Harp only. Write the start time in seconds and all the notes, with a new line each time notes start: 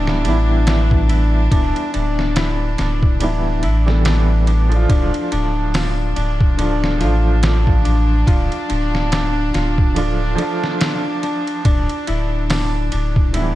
Already playing: D4 E4
0.24 D4
0.67 D4
1.09 E4
1.51 D4
1.93 D4
2.36 E4
2.78 D4
3.21 D4
3.63 E4
4.05 D4
4.47 D4
4.90 D4
5.32 D4
5.74 F4
6.16 D4
6.58 D4
7.01 F4
7.43 D4
7.85 D4
8.27 F4
8.69 D4
9.11 D4
9.54 F4
9.96 D4
10.38 D4
10.80 F4
11.23 D4
11.65 D4
12.07 E4
12.50 D4
12.91 D4
13.34 E4